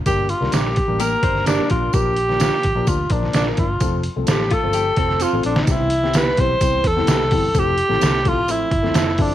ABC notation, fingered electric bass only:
X:1
M:4/4
L:1/16
Q:1/4=128
K:Fmix
V:1 name="Fingered electric bass" clef=bass
G,,,3 C,, B,,,3 A,,,3 G,,,4 B,,,2 | B,,,4- B,,, z A,,, B,,, D,,2 B,,,2 B,,,2 G,,,2 | F,,,3 C,, A,,,3 G,,,3 F,,,3 A,,, B,,,2 | [K:C] C,,6 B,,,2 C,,2 E,,2 C,,2 G,,,2 |
F,,,3 A,,, C,,3 A,,,3 G,,,2 F,,,2 G,,,2 |]